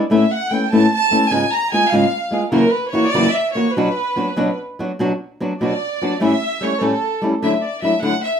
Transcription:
0.10 A2 A3 B3 C#4 E4 E5
0.33 F#5
0.51 A3 B3 C#4 E4 G5
0.72 A2 A3 B3 C#4 E4 A5
0.93 A5
1.11 A3 B3 C#4 E4
1.31 G#2 C#3 G#3 B3 F4 G#4 G#5
1.51 A#5
1.72 G#3 B3 F4 G#4 G#5
1.91 G#2 C#3 G#3 B3 F4 G#4 F5
2.31 G#3 B3 F4 G#4
2.51 F#2 C#3 E3 A#3 E4 F#4 A#4
2.71 B4
2.91 E3 A#3 E4 C#5
2.95 F#4
3.10 F#2 C#3 D5
3.15 E3 A#3 E4 F#4
3.32 E5
3.54 E3 A#3 E4 F#4 C#5
3.75 B2 F#3 B3 D4 F#4 B4
4.16 F#3 B3 D4 F#4
4.36 B2 F#3 B3 D4 F#4
4.79 F#3 B3 D4 F#4
4.99 B2 F#3 B3 D4 F#4
5.40 F#3 B3 D4 F#4
5.61 B2 F#3 B3 D4 F#4 D5
6.02 F#3 B3 D4 F#4
6.20 A2 G3 A3 C#4 E4 E5
6.61 G3 A3 C#4 E4 C#5
6.81 A2 G3 A3 C#4 E4 A4
7.22 G3 A3 C#4 E4
7.42 D3 F#3 A3 D4 E4 E5
7.56 E5
7.63 D5
7.82 F#3 A3 D4 E4 E5
8.02 D3 F#3 A3 D4 E4 F#5
8.24 E5

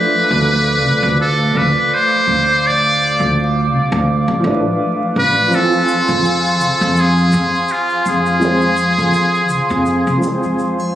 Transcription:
Already playing: F3 A3 D4 A4 B4 F5 D6
0.31 D2
0.82 C2
1.02 D2
1.21 A4
1.55 D2 B4
1.94 C5
2.27 D2
2.67 D5
3.20 D2
3.72 C2
3.92 D2
4.28 A1
4.40 A1 F3 A3
4.47 D4 B4
5.16 A1 B4
5.48 F3
5.52 C4 A4 G#5 C6, shaker
5.58 F4
5.72 shaker
5.88 shaker
6.08 F2, shaker
6.25 shaker
6.45 shaker
6.61 C2, shaker
6.81 F2, shaker
6.96 G#4, shaker
7.17 shaker
7.32 F2, shaker
7.55 shaker
7.68 F4, shaker
7.90 shaker
8.06 F2 G#4, shaker
8.26 shaker
8.40 F3 G#3 C4, shaker
8.45 C5
8.61 shaker
8.77 shaker
8.98 F2, shaker
9.13 shaker
9.35 shaker
9.49 C2, shaker
9.70 F2, shaker
9.86 shaker
10.07 C2, shaker
10.18 F3 G#3
10.23 C4, shaker
10.28 C5
10.43 F2, shaker
10.59 shaker
10.79 triangle, shaker

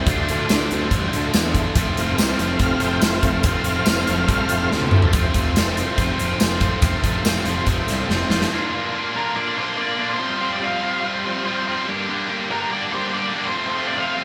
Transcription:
0.07 D2 D3 F3 A3 D4 F4 A4, kick, closed hi-hat
0.11 G4
0.27 D2 A3 D4 F4, closed hi-hat
0.32 F4
0.39 D4 F4 A4
0.49 D2 D3 F3 D4 F4 A4, snare, closed hi-hat, tambourine
0.71 D2 F3 C4 D4 F4 A4, closed hi-hat
0.91 A1 G3, kick, closed hi-hat
1.03 D4 F4 A4
1.12 D2 F3 A3 D4 F4 A4, closed hi-hat
1.23 D4 F4 A4
1.34 E2 D3 F3 D4 F4 A4, snare, closed hi-hat, tambourine
1.44 D4 F4 A4
1.55 F3 D4 F4 A4, kick, closed hi-hat
1.75 F1 F2 C3 F3 A3 C4 F4 A4, kick, closed hi-hat
1.96 F1 A3 C4 F4, closed hi-hat
2.07 C4 F4 A4
2.18 C2 F3 C4 F4 A4, snare, closed hi-hat, tambourine
2.39 F1 F3 C4 F4 A4, closed hi-hat
2.51 C4 F4 A4
2.59 F1 F5, kick, closed hi-hat
2.71 C4 F4 A4
2.80 F1 F3 C4 F4 A4 F#5, closed hi-hat
2.84 G5
2.91 C4 F4 A4
3.02 F1 F3 C4 F4 A4, snare, closed hi-hat, tambourine
3.12 C4 F4 A4, snare
3.23 F1 C4 F4 A4, kick, closed hi-hat
3.43 F1 F2 C3 F3 A3 C4 F4 A4, kick, closed hi-hat
3.64 F1 F5, closed hi-hat
3.77 C4 F4 A4
3.86 F1 F3 C4 F4 A4 F5, snare, closed hi-hat, tambourine
4.07 F1 F3 C4 F4 A4, closed hi-hat
4.21 C4 F4 A4
4.28 C2, kick, closed hi-hat
4.33 F5
4.42 C4 F4 A4
4.49 F1 F3, closed hi-hat
4.53 C4 F4 A4
4.64 C4 F4 A4
4.72 D2 F3 C4 F4 A4, snare
4.81 B3 C4 A4, high tom
4.85 C4 D4 F4
4.90 E4 F4, mid tom
4.94 F3 C4 F4 G4 A4
4.99 A4 B4, floor tom
5.04 C5 D5
5.10 F1 F2 C3 F3 A3 C4 F4 C5 E5, kick, closed hi-hat
5.15 F3 A3 C4 F4 A4
5.26 C4 F4 A4
5.34 F1 F3 A3 C4 F4, kick, closed hi-hat
5.46 C4 F4 A4
5.55 F1 F3 A3 C4 F4 A4, snare, closed hi-hat, tambourine
5.77 F3 A3 C4 F4 A4, closed hi-hat
5.90 C4 F4 A4
5.98 F1 F2 C3 F3 A3 C4 F4, kick, closed hi-hat
6.11 C4 F4 A4
6.19 F1 F3 C4 F4, closed hi-hat
6.24 A4
6.33 C4 F4 A4
6.40 F1 F3 A3 C4 F4 A4, snare, closed hi-hat, tambourine
6.44 F4
6.61 F3 A3 C4 F4, kick, closed hi-hat
6.65 F3 F4 A4
6.82 F1 F2 C3 F3 A3 C4 F4, kick, closed hi-hat
6.86 A4
6.96 C4 F4 A4
7.04 F1 F3 A3 C4 F4, kick, closed hi-hat
7.17 C4 F4 A4
7.24 F1 F3 A3 C4 F4 A4, snare, closed hi-hat, tambourine
7.45 F1 F3 A3 C4 F4, closed hi-hat
7.50 F3 C4 F4 A4
7.60 C4 F4 A4
7.66 F1 F2 C3 F3 A3 C4 F4, kick, closed hi-hat
7.81 C4 F4 A4
7.88 C2 F3 C4 F4, snare, closed hi-hat
7.93 A4
8.01 C4 F4 A4
8.09 F1 F3 A3 C4 F4, snare
8.13 F4 A4
8.30 F1 F3 A3 C4 F4, snare
8.35 A4
8.41 snare
8.51 A#2 D3 A#3 D4 F4 D5
8.73 A#2 D3 A#3 D4 F4
8.93 A#2 D3 A#3 D4 F4
9.14 A#2 D3 A#3 D4 F4 A#4
9.25 A#4
9.35 A#2 D3 A#3 D4 F4 D5
9.56 A#2 D3 A#3 D4 F4 C5
9.77 A#2 D3 A#3 D4 F4 D5
9.98 A#2 D3 A#3 D4 F4
10.09 C5
10.18 C3 F3 G3 C4 F4 C5
10.39 C3 F3 G3 C4 F4
10.53 D5
10.60 C3 F3 G3 C4 F4 F5
10.82 C3 F3 G3 C4 F4
11.03 C3 F3 G3 C4 F4
11.24 C3 F3 G3 C4 F4
11.46 C3 F3 G3 C4 F4
11.66 C3 F3 G3 C4 F4
11.88 G2 D3 G3 A#3 D4 G4 D5
12.08 G2 D3 G3 A#3 D4 G4
12.28 G2 D3 G3 A#3 D4 G4
12.50 G2 D3 G3 A#3 D4 G4 A#4
12.60 A#4
12.70 G2 D3 G3 A#3 D4 G4 D5
12.91 G2 D3 G3 A#3 D4 G4 C5
13.12 G2 D3 G3 A#3 D4 G4 D5
13.33 G2 D3 G3 A#3 D4 G4
13.45 C5
13.52 F2 C3 F3 A3 C4 F4 C5
13.67 C5
13.73 F2 C3 F3 A3 C4 F4
13.87 D5
13.94 F2 C3 F3 A3 C4 F4
13.98 F5
14.16 F2 C3 F3 A3 C4 F4

